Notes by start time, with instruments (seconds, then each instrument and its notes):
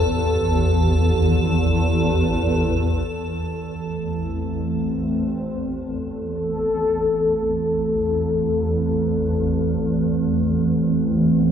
Already playing: synth drone A1 E2, ambient pad A4
3.08 synth drone A1 E2, analog synth pad E3
3.71 analog synth pad A3
3.98 analog synth pad C4
5.31 analog synth pad A4